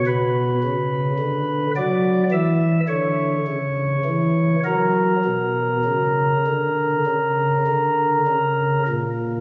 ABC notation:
X:1
M:4/4
L:1/8
Q:1/4=50
K:F#phr
V:1 name="Pipe organ"
B3 d e c3 | ^A6- A z |]
V:2 name="Pipe organ" clef=bass
B,, C, D, F, E, D, C, E, | F, B,, C, D, C, D, C, ^A,, |]